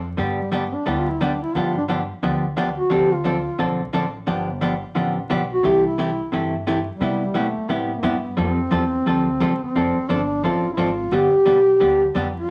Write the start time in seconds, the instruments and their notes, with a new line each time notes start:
Already playing: upright bass F2
0.17 upright bass G2, hollow-body jazz guitar D3 G3 B3 D4 G4
0.39 duduk G3
0.52 hollow-body jazz guitar D3 G3 B3 D4 G4, duduk B3
0.73 duduk D4
0.86 upright bass D2, hollow-body jazz guitar D3 G3 B3 D4 G4, duduk E4
0.98 duduk F4
1.10 duduk E4
1.21 hollow-body jazz guitar D3 G3 B3 D4 G4, duduk D4
1.42 duduk E4
1.55 upright bass G2, hollow-body jazz guitar D3 F3 B3 D4 G4, duduk F4
1.77 duduk D4
1.88 hollow-body jazz guitar D3 F3 B3 D4 G4
2.23 upright bass D2, hollow-body jazz guitar D3 F3 B3 D4 G4
2.57 hollow-body jazz guitar D3 F3 B3 D4 G4
2.78 duduk F#4
2.90 upright bass D2, hollow-body jazz guitar D3 F3 C4 D4 A4, duduk G4
3.13 duduk F4
3.24 hollow-body jazz guitar D3 F3 C4 D4 A4
3.59 upright bass B1, hollow-body jazz guitar D3 F3 C4 D4 A4
3.93 upright bass A1, hollow-body jazz guitar D3 F3 C4 D4 A4
4.27 upright bass G1, hollow-body jazz guitar D3 F3 B3 D4 G4
4.61 hollow-body jazz guitar D3 F3 B3 D4 G4
4.95 upright bass A1, hollow-body jazz guitar D3 F3 B3 D4 G4
5.30 upright bass B1, hollow-body jazz guitar D3 F3 B3 D4 G4
5.53 duduk F#4
5.63 upright bass C2, hollow-body jazz guitar C3 E3 A3 E4 G4, duduk G4
5.86 duduk E4
5.98 hollow-body jazz guitar C3 E3 A3 E4 G4
6.32 upright bass G2, hollow-body jazz guitar C3 E3 A3 E4 G4
6.67 hollow-body jazz guitar C3 E3 A3 E4 G4
6.91 duduk G3
7.01 upright bass C3, hollow-body jazz guitar C3 G3 B3 E4 G4
7.34 upright bass B2, hollow-body jazz guitar C3 G3 B3 E4 G4, duduk A3
7.57 muted upright bass stroke
7.69 upright bass A2, hollow-body jazz guitar C3 G3 B3 E4 G4, duduk B3
7.98 duduk A#3
8.03 upright bass G2, hollow-body jazz guitar C3 G3 B3 E4 G4, duduk B3
8.37 upright bass F2, hollow-body jazz guitar F3 G3 C4 F4 A4, duduk C4
8.71 upright bass E2, hollow-body jazz guitar F3 G3 C4 F4 A4
9.06 upright bass D2, hollow-body jazz guitar F3 G3 C4 F4 A4
9.40 upright bass C2, hollow-body jazz guitar F3 G3 C4 F4 A4
9.63 duduk C4, muted upright bass stroke
9.75 upright bass F1, hollow-body jazz guitar F3 C4 D4 A4
9.98 muted upright bass stroke
10.09 upright bass G1, hollow-body jazz guitar F3 C4 D4 A4, duduk D4
10.44 upright bass A1, hollow-body jazz guitar F3 C4 D4 A4, duduk F4
10.73 duduk E4
10.77 upright bass G#1, hollow-body jazz guitar F3 C4 D4 A4, duduk F4
11.12 upright bass G1, hollow-body jazz guitar D3 G3 B3 D4 G4, duduk G4
11.33 muted upright bass stroke
11.45 upright bass B1, hollow-body jazz guitar D3 G3 B3 D4 G4
11.80 upright bass D2, hollow-body jazz guitar D3 G3 B3 D4 G4
12.15 upright bass F2, hollow-body jazz guitar D3 G3 B3 D4 G4
12.36 duduk F4